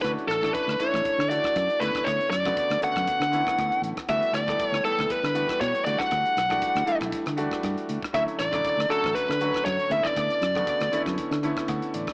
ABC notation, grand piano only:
X:1
M:4/4
L:1/16
Q:"Swing 16ths" 1/4=118
K:D
V:1 name="Grand piano"
z16 | z16 | z16 | z16 |
z16 | z12 f2 d2 |]
V:2 name="Grand piano"
[E,A,CDF]2 z [E,A,CDA]2 z [E,A,CDE]3 z [E,A,DEF]4 [D,A,B,CE]2- | [D,A,B,CE]2 z [C,D,A,B,F]2 z [D,A,B,CF]3 z [D,A,B,CE]4- [D,A,B,CE] z | [E,G,A,B,F]2 z [E,G,A,B,A]2 z [E,G,A,B,E]3 z [E,G,A,B,F]4 [E,G,A,DF]2- | [E,G,A,DF]2 z [E,G,A,DF]2 z [E,G,A,DE]3 z [E,G,A,DF]4- [E,G,A,DF] z |
[D,F,A,CE]2 z [C,D,F,A,E]2 z [D,F,A,CF]3 z [D,F,A,CF]4 [C,D,A,B,E]2- | [C,D,A,B,E]2 z [C,D,A,B,F]2 z [D,A,B,CE]3 z [D,A,B,CE]4- [D,A,B,CE] z |]